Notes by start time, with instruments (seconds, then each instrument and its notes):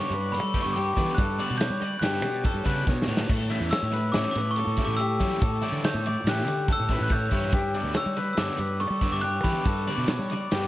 Already playing: overdriven electric guitar D3 G3 B3 D4, clean electric guitar C#5, glockenspiel C#6
0.10 fingered electric bass G2, clean electric guitar B4, muted overdriven electric guitar stroke, ride
0.32 clean electric guitar A4, glockenspiel B5, muted overdriven electric guitar stroke, snare, ride
0.43 fingered electric bass G3
0.54 overdriven electric guitar D3 G3 B3 D4, kick, snare, ride
0.62 fingered electric bass G2, glockenspiel C#6
0.73 clean electric guitar G4, glockenspiel D6, muted overdriven electric guitar stroke, snare, ride
0.96 overdriven electric guitar D3 G3 B3 D4, fingered electric bass E3, kick, snare, ride
1.14 fingered electric bass G2, glockenspiel F#6, muted overdriven electric guitar stroke, kick, ride
1.18 clean electric guitar A4
1.39 overdriven electric guitar D3 G3 B3 D4, clean electric guitar D5, ride
1.50 fingered electric bass B2
1.57 clean electric guitar C#5, glockenspiel G6, muted overdriven electric guitar stroke, snare, ride
1.70 fingered electric bass G3
1.81 clean electric guitar D5, muted overdriven electric guitar stroke, ride
1.99 fingered electric bass G2, overdriven electric guitar D3 G3 B3 D4, clean electric guitar G4, glockenspiel F#6, snare, ride
2.22 fingered electric bass B2, muted overdriven electric guitar stroke, snare, ride
2.44 clean electric guitar A4, muted overdriven electric guitar stroke, kick, ride
2.54 fingered electric bass G2
2.65 fingered electric bass C#3, overdriven electric guitar D3 G3 B3 D4, clean electric guitar B4, kick, ride
2.87 fingered electric bass B2, clean electric guitar C#5, muted overdriven electric guitar stroke, kick, snare
3.02 snare
3.07 fingered electric bass A2, overdriven electric guitar D3 G3 B3 D4, clean electric guitar C#5
3.17 snare
3.29 fingered electric bass A2, clean electric guitar A4, muted overdriven electric guitar stroke, kick, crash, ride
3.50 overdriven electric guitar E3 G3 C#4 E4, clean electric guitar E5, ride
3.61 fingered electric bass E2
3.71 clean electric guitar C#5, glockenspiel E6, muted overdriven electric guitar stroke, snare, ride
3.83 fingered electric bass A2
3.92 clean electric guitar B4, muted overdriven electric guitar stroke, snare, ride
4.12 fingered electric bass A2, overdriven electric guitar E3 G3 C#4 E4, clean electric guitar C#5, glockenspiel D6, snare, ride
4.31 glockenspiel D6
4.36 fingered electric bass A2, clean electric guitar B4, muted overdriven electric guitar stroke, snare, ride
4.51 glockenspiel C#6
4.56 clean electric guitar A4, muted overdriven electric guitar stroke, ride
4.67 fingered electric bass A2
4.77 overdriven electric guitar E3 G3 C#4 E4, kick, snare, ride
4.85 fingered electric bass A2, glockenspiel D6
4.97 clean electric guitar G4, glockenspiel E6, muted overdriven electric guitar stroke, ride
5.20 overdriven electric guitar E3 G3 C#4 E4, fingered electric bass F#3, kick, ride
5.42 fingered electric bass A2, clean electric guitar A4, muted overdriven electric guitar stroke, kick, ride
5.62 overdriven electric guitar E3 G3 C#4 E4, clean electric guitar D5, ride
5.72 fingered electric bass D3
5.84 clean electric guitar C#5, glockenspiel G6, muted overdriven electric guitar stroke, snare, ride
5.94 fingered electric bass A2
6.06 clean electric guitar D5, muted overdriven electric guitar stroke, ride
6.24 fingered electric bass A2, overdriven electric guitar E3 G3, clean electric guitar G4, snare, ride
6.28 overdriven electric guitar C#4 E4, glockenspiel F#6
6.47 fingered electric bass D3, muted overdriven electric guitar stroke, snare, ride
6.68 clean electric guitar A4, muted overdriven electric guitar stroke, kick, ride
6.72 glockenspiel E6
6.80 fingered electric bass A2
6.88 overdriven electric guitar E3 G3 C#4 E4, clean electric guitar B4, kick, snare, ride
7.01 fingered electric bass A2, glockenspiel F#6
7.09 clean electric guitar C#5, glockenspiel G6, muted overdriven electric guitar stroke, kick, ride
7.31 fingered electric bass G2, overdriven electric guitar E3 G3 C#4 E4, clean electric guitar C#5, kick, ride
7.52 fingered electric bass G2, clean electric guitar G4, muted overdriven electric guitar stroke, kick, ride
7.74 overdriven electric guitar D3 G3 B3 D4, clean electric guitar D5, ride
7.84 fingered electric bass D2
7.94 clean electric guitar C#5, glockenspiel E6, muted overdriven electric guitar stroke, snare, ride
8.06 fingered electric bass G3
8.17 clean electric guitar B4, muted overdriven electric guitar stroke, snare, ride
8.33 glockenspiel E6, ride
8.38 fingered electric bass G2, overdriven electric guitar D3 G3 B3 D4, clean electric guitar C#5, glockenspiel D6, snare
8.58 fingered electric bass G2, clean electric guitar B4, muted overdriven electric guitar stroke, ride
8.80 clean electric guitar A4, glockenspiel C#6, muted overdriven electric guitar stroke, ride
8.90 fingered electric bass G3
9.01 overdriven electric guitar D3 G3 B3 D4, kick, ride
9.12 fingered electric bass G2, glockenspiel D6
9.21 clean electric guitar G4, glockenspiel F#6, muted overdriven electric guitar stroke, ride
9.44 overdriven electric guitar D3 G3 B3 D4, fingered electric bass E3, glockenspiel B5, kick, snare, ride
9.65 fingered electric bass G2, clean electric guitar A4, muted overdriven electric guitar stroke, kick, ride
9.87 overdriven electric guitar D3 G3 B3 D4, clean electric guitar D5, snare, ride
9.98 fingered electric bass B2
10.07 clean electric guitar C#5, muted overdriven electric guitar stroke, snare, ride
10.19 fingered electric bass G3
10.30 clean electric guitar D5, muted overdriven electric guitar stroke, snare, ride
10.51 fingered electric bass G2, overdriven electric guitar D3 G3 B3 D4, clean electric guitar G4, snare, ride